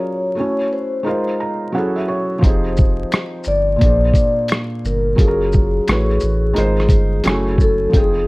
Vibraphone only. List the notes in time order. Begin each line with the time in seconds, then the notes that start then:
Already playing: C#5
0.73 C5
2.45 C5
3.48 D5
4.87 A#4
5.15 A#4
5.20 G#4
7.62 A4
7.97 G#4